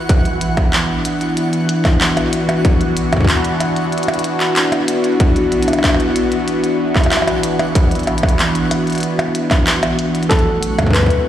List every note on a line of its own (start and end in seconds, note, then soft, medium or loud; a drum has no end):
0.00 10.31 E3 loud
0.00 10.31 B3 medium
0.00 1.98 E4 medium
0.00 10.32 F#4 medium
0.00 0.56 B4 medium
0.00 10.32 F#5 medium
0.09 kick loud
0.09 closed hi-hat medium
0.25 closed hi-hat soft
0.40 11.29 D4 medium
0.40 closed hi-hat medium
0.57 kick loud
0.57 closed hi-hat soft
0.57 percussion blips medium
0.73 clap loud
0.73 closed hi-hat medium
1.05 closed hi-hat medium
1.21 closed hi-hat soft
1.37 closed hi-hat medium
1.53 closed hi-hat soft
1.68 11.29 F#4 medium
1.68 closed hi-hat medium
1.85 kick loud
1.85 clap medium
1.85 closed hi-hat soft
1.85 percussion blips medium
2.01 clap loud
2.01 closed hi-hat medium
2.17 closed hi-hat soft
2.17 percussion blips soft
2.33 closed hi-hat medium
2.49 closed hi-hat soft
2.49 percussion blips medium
2.65 kick loud
2.65 closed hi-hat medium
2.81 closed hi-hat soft
2.97 closed hi-hat medium
3.13 kick soft
3.13 closed hi-hat soft
3.13 percussion blips medium
3.17 kick medium
3.21 kick medium
3.25 kick medium
3.29 clap loud
3.29 closed hi-hat medium
3.45 closed hi-hat soft
3.60 closed hi-hat medium
3.60 percussion blips soft
3.76 closed hi-hat soft
3.92 closed hi-hat soft
3.98 closed hi-hat soft
4.03 closed hi-hat soft
4.08 closed hi-hat soft
4.08 percussion blips medium
4.14 closed hi-hat soft
4.19 closed hi-hat medium
4.24 closed hi-hat medium
4.40 clap medium
4.40 closed hi-hat soft
4.56 clap loud
4.56 closed hi-hat medium
4.72 closed hi-hat soft
4.72 percussion blips medium
4.88 closed hi-hat medium
5.04 closed hi-hat soft
5.20 kick loud
5.20 closed hi-hat medium
5.36 closed hi-hat soft
5.52 closed hi-hat soft
5.63 closed hi-hat medium
5.68 closed hi-hat soft
5.68 percussion blips soft
5.73 closed hi-hat medium
5.73 percussion blips soft
5.79 percussion blips soft
5.84 kick loud
5.84 clap loud
5.84 closed hi-hat medium
5.84 percussion blips medium
5.89 percussion blips medium
5.94 percussion blips medium
6.00 closed hi-hat soft
6.16 closed hi-hat medium
6.32 closed hi-hat soft
6.48 closed hi-hat medium
6.64 closed hi-hat soft
6.96 kick loud
6.96 clap medium
6.96 percussion blips soft
7.01 closed hi-hat soft
7.01 percussion blips soft
7.06 percussion blips soft
7.12 clap loud
7.12 closed hi-hat medium
7.12 percussion blips soft
7.17 percussion blips soft
7.22 percussion blips soft
7.27 closed hi-hat soft
7.27 percussion blips medium
7.43 closed hi-hat medium
7.59 closed hi-hat soft
7.59 percussion blips medium
7.75 kick loud
7.75 closed hi-hat medium
7.91 closed hi-hat soft
7.95 closed hi-hat soft
7.99 closed hi-hat soft
8.03 closed hi-hat soft
8.07 closed hi-hat soft
8.07 percussion blips soft
8.18 closed hi-hat medium
8.23 kick loud
8.23 percussion blips medium
8.29 closed hi-hat medium
8.39 clap loud
8.39 closed hi-hat medium
8.55 closed hi-hat soft
8.71 closed hi-hat loud
8.71 percussion blips soft
8.87 closed hi-hat soft
8.90 closed hi-hat soft
8.92 closed hi-hat soft
8.95 closed hi-hat soft
8.98 closed hi-hat soft
9.00 closed hi-hat soft
9.03 closed hi-hat medium
9.19 closed hi-hat soft
9.19 percussion blips medium
9.35 closed hi-hat medium
9.51 kick loud
9.51 clap medium
9.51 closed hi-hat soft
9.51 percussion blips medium
9.67 clap loud
9.67 closed hi-hat medium
9.83 closed hi-hat soft
9.83 percussion blips medium
9.99 closed hi-hat loud
10.15 closed hi-hat soft
10.23 closed hi-hat soft
10.29 11.29 F#3 medium
10.29 11.29 A3 medium
10.29 10.96 A4 medium
10.29 11.29 F#6 medium
10.29 kick loud
10.29 clap medium
10.29 closed hi-hat medium
10.39 closed hi-hat soft
10.63 closed hi-hat loud
10.67 11.29 E4 medium
10.79 kick medium
10.79 closed hi-hat soft
10.79 percussion blips medium
10.83 11.29 C4 medium
10.83 kick medium
10.87 kick medium
10.91 11.29 B4 medium
10.91 kick medium
10.91 clap loud
10.91 closed hi-hat medium
10.95 kick medium
10.98 kick medium
11.03 kick medium
11.06 kick loud
11.06 closed hi-hat soft